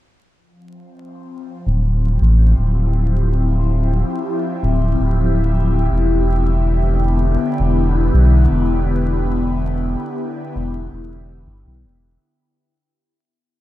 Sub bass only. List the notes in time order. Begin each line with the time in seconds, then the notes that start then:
1.66 D1
2.21 A1
2.58 D1
4.63 D1
5.00 D1
5.92 E1
7.60 E1
8.14 B1
8.51 E1
10.56 E1
10.93 E1
11.47 G1
11.67 B1
11.84 E1